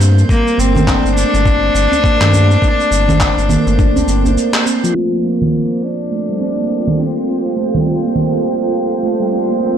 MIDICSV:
0, 0, Header, 1, 8, 480
1, 0, Start_track
1, 0, Key_signature, -2, "minor"
1, 0, Tempo, 582524
1, 241, Time_signature, 4, 2, 24, 8
1, 8057, End_track
2, 0, Start_track
2, 0, Title_t, "Synth texture"
2, 0, Program_c, 0, 99
2, 0, Note_on_c, 0, 72, 87
2, 4075, Note_off_c, 0, 72, 0
2, 4085, Note_on_c, 0, 72, 77
2, 8057, Note_off_c, 0, 72, 0
2, 8057, End_track
3, 0, Start_track
3, 0, Title_t, "Ambient pad"
3, 0, Program_c, 1, 92
3, 4250, Note_on_c, 1, 72, 70
3, 4271, Note_on_c, 1, 65, 68
3, 4536, Note_on_c, 1, 69, 88
3, 4762, Note_on_c, 1, 79, 70
3, 8057, Note_off_c, 1, 65, 0
3, 8057, Note_off_c, 1, 69, 0
3, 8057, Note_off_c, 1, 72, 0
3, 8057, Note_off_c, 1, 79, 0
3, 8057, End_track
4, 0, Start_track
4, 0, Title_t, "Cello"
4, 0, Program_c, 2, 42
4, 245, Note_on_c, 2, 58, 109
4, 481, Note_on_c, 2, 60, 109
4, 493, Note_off_c, 2, 58, 0
4, 958, Note_off_c, 2, 60, 0
4, 963, Note_on_c, 2, 62, 125
4, 3569, Note_off_c, 2, 62, 0
4, 4082, Note_on_c, 2, 57, 82
4, 4320, Note_on_c, 2, 58, 82
4, 4333, Note_off_c, 2, 57, 0
4, 4799, Note_on_c, 2, 62, 98
4, 4812, Note_off_c, 2, 58, 0
4, 5276, Note_off_c, 2, 62, 0
4, 5281, Note_on_c, 2, 62, 96
4, 5762, Note_on_c, 2, 60, 80
4, 5775, Note_off_c, 2, 62, 0
4, 6241, Note_off_c, 2, 60, 0
4, 7934, Note_on_c, 2, 60, 87
4, 8057, Note_off_c, 2, 60, 0
4, 8057, End_track
5, 0, Start_track
5, 0, Title_t, "Handpan"
5, 0, Program_c, 3, 114
5, 479, Note_on_c, 3, 58, 76
5, 616, Note_off_c, 3, 58, 0
5, 622, Note_on_c, 3, 57, 78
5, 710, Note_off_c, 3, 57, 0
5, 719, Note_on_c, 3, 62, 83
5, 801, Note_off_c, 3, 62, 0
5, 863, Note_on_c, 3, 60, 73
5, 956, Note_off_c, 3, 60, 0
5, 1679, Note_on_c, 3, 58, 83
5, 1816, Note_off_c, 3, 58, 0
5, 1819, Note_on_c, 3, 57, 80
5, 1909, Note_off_c, 3, 57, 0
5, 1918, Note_on_c, 3, 62, 73
5, 2001, Note_off_c, 3, 62, 0
5, 2063, Note_on_c, 3, 60, 76
5, 2156, Note_off_c, 3, 60, 0
5, 2877, Note_on_c, 3, 58, 82
5, 3015, Note_off_c, 3, 58, 0
5, 3020, Note_on_c, 3, 57, 68
5, 3109, Note_off_c, 3, 57, 0
5, 3118, Note_on_c, 3, 62, 86
5, 3201, Note_off_c, 3, 62, 0
5, 3261, Note_on_c, 3, 60, 83
5, 3355, Note_off_c, 3, 60, 0
5, 3504, Note_on_c, 3, 58, 81
5, 3596, Note_off_c, 3, 58, 0
5, 3839, Note_on_c, 3, 60, 75
5, 3976, Note_off_c, 3, 60, 0
5, 3986, Note_on_c, 3, 53, 106
5, 4072, Note_off_c, 3, 53, 0
5, 4081, Note_on_c, 3, 60, 65
5, 4162, Note_off_c, 3, 60, 0
5, 4224, Note_on_c, 3, 58, 59
5, 4316, Note_off_c, 3, 58, 0
5, 5040, Note_on_c, 3, 57, 69
5, 5176, Note_off_c, 3, 57, 0
5, 5182, Note_on_c, 3, 55, 63
5, 5270, Note_off_c, 3, 55, 0
5, 5277, Note_on_c, 3, 60, 70
5, 5360, Note_off_c, 3, 60, 0
5, 5421, Note_on_c, 3, 58, 63
5, 5514, Note_off_c, 3, 58, 0
5, 6236, Note_on_c, 3, 57, 65
5, 6374, Note_off_c, 3, 57, 0
5, 6380, Note_on_c, 3, 55, 65
5, 6469, Note_off_c, 3, 55, 0
5, 6472, Note_on_c, 3, 60, 72
5, 6558, Note_off_c, 3, 60, 0
5, 6619, Note_on_c, 3, 58, 68
5, 6714, Note_off_c, 3, 58, 0
5, 7440, Note_on_c, 3, 57, 75
5, 7576, Note_off_c, 3, 57, 0
5, 7581, Note_on_c, 3, 55, 65
5, 7670, Note_off_c, 3, 55, 0
5, 7679, Note_on_c, 3, 60, 61
5, 7762, Note_off_c, 3, 60, 0
5, 7820, Note_on_c, 3, 58, 69
5, 7914, Note_off_c, 3, 58, 0
5, 8057, End_track
6, 0, Start_track
6, 0, Title_t, "Analog synth bass"
6, 0, Program_c, 4, 38
6, 0, Note_on_c, 4, 43, 96
6, 196, Note_off_c, 4, 43, 0
6, 479, Note_on_c, 4, 31, 105
6, 799, Note_off_c, 4, 31, 0
6, 861, Note_on_c, 4, 31, 86
6, 1023, Note_off_c, 4, 31, 0
6, 1103, Note_on_c, 4, 31, 93
6, 1397, Note_off_c, 4, 31, 0
6, 1438, Note_on_c, 4, 31, 85
6, 1543, Note_off_c, 4, 31, 0
6, 1818, Note_on_c, 4, 43, 91
6, 2115, Note_off_c, 4, 43, 0
6, 2399, Note_on_c, 4, 31, 100
6, 2719, Note_off_c, 4, 31, 0
6, 2780, Note_on_c, 4, 31, 95
6, 2942, Note_off_c, 4, 31, 0
6, 3022, Note_on_c, 4, 31, 90
6, 3317, Note_off_c, 4, 31, 0
6, 3359, Note_on_c, 4, 31, 78
6, 3600, Note_off_c, 4, 31, 0
6, 8057, End_track
7, 0, Start_track
7, 0, Title_t, "Djembe"
7, 617, Note_on_c, 9, 64, 89
7, 621, Note_on_c, 9, 63, 41
7, 699, Note_off_c, 9, 64, 0
7, 703, Note_off_c, 9, 63, 0
7, 1105, Note_on_c, 9, 62, 62
7, 1187, Note_off_c, 9, 62, 0
7, 1345, Note_on_c, 9, 62, 52
7, 1427, Note_off_c, 9, 62, 0
7, 1439, Note_on_c, 9, 62, 72
7, 1521, Note_off_c, 9, 62, 0
7, 1580, Note_on_c, 9, 64, 87
7, 1584, Note_on_c, 9, 63, 66
7, 1663, Note_off_c, 9, 64, 0
7, 1666, Note_off_c, 9, 63, 0
7, 1815, Note_on_c, 9, 62, 68
7, 1897, Note_off_c, 9, 62, 0
7, 1917, Note_on_c, 9, 64, 78
7, 2000, Note_off_c, 9, 64, 0
7, 2544, Note_on_c, 9, 63, 44
7, 2545, Note_on_c, 9, 64, 95
7, 2627, Note_off_c, 9, 63, 0
7, 2628, Note_off_c, 9, 64, 0
7, 2783, Note_on_c, 9, 63, 38
7, 2865, Note_off_c, 9, 63, 0
7, 3026, Note_on_c, 9, 62, 61
7, 3109, Note_off_c, 9, 62, 0
7, 3265, Note_on_c, 9, 64, 99
7, 3347, Note_off_c, 9, 64, 0
7, 3502, Note_on_c, 9, 64, 77
7, 3584, Note_off_c, 9, 64, 0
7, 8057, End_track
8, 0, Start_track
8, 0, Title_t, "Drums"
8, 6, Note_on_c, 9, 82, 74
8, 88, Note_off_c, 9, 82, 0
8, 151, Note_on_c, 9, 82, 33
8, 233, Note_off_c, 9, 82, 0
8, 240, Note_on_c, 9, 36, 99
8, 246, Note_on_c, 9, 82, 43
8, 323, Note_off_c, 9, 36, 0
8, 329, Note_off_c, 9, 82, 0
8, 390, Note_on_c, 9, 82, 28
8, 472, Note_off_c, 9, 82, 0
8, 491, Note_on_c, 9, 82, 73
8, 573, Note_off_c, 9, 82, 0
8, 628, Note_on_c, 9, 64, 88
8, 633, Note_on_c, 9, 82, 34
8, 710, Note_off_c, 9, 64, 0
8, 716, Note_off_c, 9, 82, 0
8, 720, Note_on_c, 9, 36, 95
8, 723, Note_on_c, 9, 39, 73
8, 728, Note_on_c, 9, 82, 42
8, 803, Note_off_c, 9, 36, 0
8, 806, Note_off_c, 9, 39, 0
8, 811, Note_off_c, 9, 82, 0
8, 871, Note_on_c, 9, 82, 30
8, 953, Note_off_c, 9, 82, 0
8, 966, Note_on_c, 9, 82, 79
8, 1048, Note_off_c, 9, 82, 0
8, 1107, Note_on_c, 9, 82, 31
8, 1189, Note_off_c, 9, 82, 0
8, 1200, Note_on_c, 9, 36, 102
8, 1206, Note_on_c, 9, 82, 39
8, 1282, Note_off_c, 9, 36, 0
8, 1288, Note_off_c, 9, 82, 0
8, 1445, Note_on_c, 9, 82, 75
8, 1528, Note_off_c, 9, 82, 0
8, 1589, Note_on_c, 9, 82, 32
8, 1671, Note_off_c, 9, 82, 0
8, 1679, Note_on_c, 9, 36, 107
8, 1686, Note_on_c, 9, 82, 42
8, 1762, Note_off_c, 9, 36, 0
8, 1769, Note_off_c, 9, 82, 0
8, 1824, Note_on_c, 9, 39, 78
8, 1824, Note_on_c, 9, 64, 77
8, 1830, Note_on_c, 9, 82, 28
8, 1907, Note_off_c, 9, 39, 0
8, 1907, Note_off_c, 9, 64, 0
8, 1912, Note_off_c, 9, 82, 0
8, 1924, Note_on_c, 9, 82, 80
8, 2006, Note_off_c, 9, 82, 0
8, 2068, Note_on_c, 9, 82, 37
8, 2150, Note_off_c, 9, 82, 0
8, 2160, Note_on_c, 9, 36, 101
8, 2166, Note_on_c, 9, 82, 43
8, 2242, Note_off_c, 9, 36, 0
8, 2249, Note_off_c, 9, 82, 0
8, 2309, Note_on_c, 9, 82, 31
8, 2391, Note_off_c, 9, 82, 0
8, 2405, Note_on_c, 9, 82, 70
8, 2488, Note_off_c, 9, 82, 0
8, 2544, Note_on_c, 9, 64, 88
8, 2549, Note_on_c, 9, 82, 35
8, 2627, Note_off_c, 9, 64, 0
8, 2632, Note_off_c, 9, 82, 0
8, 2640, Note_on_c, 9, 39, 79
8, 2641, Note_on_c, 9, 36, 91
8, 2645, Note_on_c, 9, 82, 43
8, 2722, Note_off_c, 9, 39, 0
8, 2723, Note_off_c, 9, 36, 0
8, 2727, Note_off_c, 9, 82, 0
8, 2786, Note_on_c, 9, 82, 30
8, 2869, Note_off_c, 9, 82, 0
8, 2877, Note_on_c, 9, 64, 64
8, 2883, Note_on_c, 9, 82, 74
8, 2960, Note_off_c, 9, 64, 0
8, 2965, Note_off_c, 9, 82, 0
8, 3026, Note_on_c, 9, 82, 33
8, 3108, Note_off_c, 9, 82, 0
8, 3122, Note_on_c, 9, 36, 102
8, 3123, Note_on_c, 9, 82, 41
8, 3204, Note_off_c, 9, 36, 0
8, 3206, Note_off_c, 9, 82, 0
8, 3267, Note_on_c, 9, 82, 30
8, 3350, Note_off_c, 9, 82, 0
8, 3363, Note_on_c, 9, 82, 68
8, 3445, Note_off_c, 9, 82, 0
8, 3508, Note_on_c, 9, 82, 33
8, 3591, Note_off_c, 9, 82, 0
8, 3605, Note_on_c, 9, 82, 40
8, 3688, Note_off_c, 9, 82, 0
8, 3741, Note_on_c, 9, 39, 81
8, 3746, Note_on_c, 9, 82, 27
8, 3823, Note_off_c, 9, 39, 0
8, 3828, Note_off_c, 9, 82, 0
8, 3844, Note_on_c, 9, 82, 77
8, 3927, Note_off_c, 9, 82, 0
8, 3990, Note_on_c, 9, 82, 36
8, 4072, Note_off_c, 9, 82, 0
8, 4463, Note_on_c, 9, 64, 74
8, 4545, Note_off_c, 9, 64, 0
8, 5664, Note_on_c, 9, 64, 65
8, 5746, Note_off_c, 9, 64, 0
8, 6383, Note_on_c, 9, 64, 71
8, 6465, Note_off_c, 9, 64, 0
8, 6719, Note_on_c, 9, 64, 54
8, 6802, Note_off_c, 9, 64, 0
8, 8057, End_track
0, 0, End_of_file